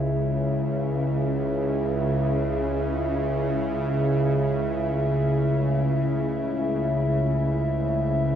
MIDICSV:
0, 0, Header, 1, 3, 480
1, 0, Start_track
1, 0, Key_signature, 4, "minor"
1, 0, Tempo, 500000
1, 8020, End_track
2, 0, Start_track
2, 0, Title_t, "Analog synth pad"
2, 0, Program_c, 0, 89
2, 0, Note_on_c, 0, 56, 81
2, 0, Note_on_c, 0, 64, 73
2, 0, Note_on_c, 0, 73, 84
2, 0, Note_on_c, 0, 76, 79
2, 4555, Note_off_c, 0, 56, 0
2, 4563, Note_on_c, 0, 57, 78
2, 4567, Note_off_c, 0, 73, 0
2, 7280, Note_on_c, 0, 72, 74
2, 8020, Note_off_c, 0, 57, 0
2, 8020, Note_off_c, 0, 64, 0
2, 8020, Note_off_c, 0, 72, 0
2, 8020, Note_off_c, 0, 76, 0
2, 8020, End_track
3, 0, Start_track
3, 0, Title_t, "Synth drone"
3, 0, Program_c, 1, 95
3, 0, Note_on_c, 1, 37, 78
3, 0, Note_on_c, 1, 49, 72
3, 8020, Note_off_c, 1, 37, 0
3, 8020, Note_off_c, 1, 49, 0
3, 8020, End_track
0, 0, End_of_file